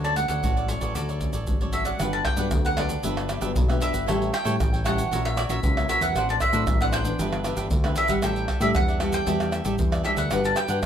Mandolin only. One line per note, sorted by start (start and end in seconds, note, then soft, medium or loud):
0.05 0.16 A5 medium
0.16 0.27 F#5 medium
0.28 0.66 F#5 medium
0.68 0.95 C#5 medium
0.95 1.44 D5 medium
1.73 1.85 E5 medium
1.85 2.10 F#5 medium
2.13 2.25 A5 medium
2.25 2.65 G5 loud
2.66 2.77 F#5 medium
2.78 3.82 D5 medium
3.82 4.35 E5 medium
4.34 4.85 G5 loud
4.86 5.25 F#5 medium
5.25 5.37 E5 medium
5.37 5.42 D5 medium
5.50 5.88 E5 medium
5.90 6.02 E5 medium
6.02 6.26 F#5 medium
6.30 6.35 A5 medium
6.42 6.81 E5 medium
6.82 6.93 F#5 medium
6.93 7.97 G5 loud
7.97 8.09 E5 medium
8.10 8.15 F#5 medium
8.24 8.61 G5 medium
8.62 8.67 E5 medium
8.76 9.12 F#5 medium
9.14 10.05 G5 loud
10.05 10.10 E5 medium
10.18 10.45 F#5 medium
10.45 10.57 A5 loud
10.57 10.86 G5 loud